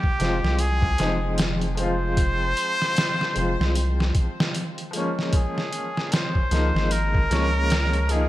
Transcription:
Already playing: G4
0.03 kick
0.19 F1 F3 G#3 C4 F4, snare, closed hi-hat
0.43 C2, snare
0.59 G#4, closed hi-hat
0.82 kick
0.98 F1 F3 G#3 C4 D#4, snare, closed hi-hat
1.38 snare, closed hi-hat
1.61 closed hi-hat
1.75 F3 G#3 C4 C5, closed hi-hat
1.81 F4
2.17 kick, closed hi-hat
2.57 closed hi-hat
2.82 snare
2.97 snare, closed hi-hat
3.21 snare
3.33 F1 F3 G#3 C4, closed hi-hat
3.39 F4
3.60 C2, snare
3.75 closed hi-hat
4.00 snare
4.15 kick, closed hi-hat
4.40 snare
4.55 closed hi-hat
4.78 closed hi-hat
4.91 F3 G#3, closed hi-hat
4.95 A#3 C#4
5.19 snare
5.33 G#4, kick, closed hi-hat
5.58 snare
5.72 closed hi-hat
5.97 snare
6.12 C5, snare, closed hi-hat
6.35 kick
6.51 C#2 F3 G#3 A#3 D#4, snare, closed hi-hat
6.74 G#1, snare
6.91 A#4, closed hi-hat
7.14 kick
7.30 C#2 F3 G#3 A#3 C#4, snare, closed hi-hat
7.70 snare, closed hi-hat
7.93 closed hi-hat
8.07 F3 G#3 A#3, closed hi-hat
8.11 D#4 G#4

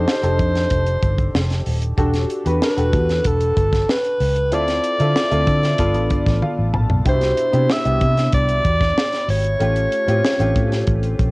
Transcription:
Already playing: D4 D#4 G4 A4 C5
0.08 snare
0.22 F1 D4 D#4 G4 A4, closed hi-hat
0.39 F2, kick, closed hi-hat
0.55 snare, closed hi-hat
0.70 F1, kick, closed hi-hat
0.87 closed hi-hat
1.03 G1, kick, closed hi-hat
1.18 kick, closed hi-hat
1.35 F1, snare
1.50 snare, closed hi-hat
1.66 D#1, open hi-hat
1.82 closed hi-hat
1.97 E1 D4 F#4 G4 A4, kick, closed hi-hat
2.14 snare, closed hi-hat
2.30 closed hi-hat
2.45 E2 D4 F#4 G4 B4, closed hi-hat
2.62 B4, snare
2.77 E1 D4 F#4 G4 A4, closed hi-hat
2.93 E2, kick, closed hi-hat
3.09 snare, closed hi-hat
3.24 E1 A4, kick, closed hi-hat
3.40 closed hi-hat
3.57 G1, kick, closed hi-hat
3.73 kick, snare, closed hi-hat
3.89 B4, snare
4.04 closed hi-hat
4.20 C#2, open hi-hat
4.36 closed hi-hat
4.51 D2 C4 E4 F4 A4 D5, closed hi-hat
4.68 snare, closed hi-hat
4.84 closed hi-hat
4.99 D3 C4 E4 F4 A4, closed hi-hat
5.16 snare
5.30 D2 C4 E4 F4 A4, closed hi-hat
5.47 D3, kick, closed hi-hat
5.63 snare, closed hi-hat
5.78 G1 B3 D4 F4 A4, kick, closed hi-hat
5.94 A1, closed hi-hat
6.10 G1 D5, kick, closed hi-hat
6.27 A1, kick, snare, closed hi-hat
6.42 F5, high tom
6.59 A1
6.74 A#1 A5, mid tom
6.90 B1, floor tom
7.05 C2 B2 D4 E4 G4, kick, closed hi-hat
7.09 C5
7.21 snare, closed hi-hat
7.37 closed hi-hat
7.52 C3 B3 D4 E4 G4, closed hi-hat
7.70 E5, snare
7.84 C2 B3 D4 E4 G4, closed hi-hat
8.01 C3, kick, closed hi-hat
8.17 snare, closed hi-hat
8.33 C2 D5, kick, closed hi-hat
8.49 closed hi-hat
8.65 E2, kick, closed hi-hat
8.81 kick, snare, closed hi-hat
8.98 snare
9.12 snare, closed hi-hat
9.28 G#1 C#5, open hi-hat
9.44 closed hi-hat
9.60 A1 A3 C#4 F4 G4, closed hi-hat
9.76 closed hi-hat
9.92 closed hi-hat
10.07 A2 C4 C#4 F4 G4, closed hi-hat
10.25 snare
10.39 A1 A3 C#4 F4 G4, closed hi-hat
10.56 A2, kick, closed hi-hat
10.72 snare, closed hi-hat
10.87 A1, kick, closed hi-hat
11.03 closed hi-hat
11.19 A#1, kick, closed hi-hat

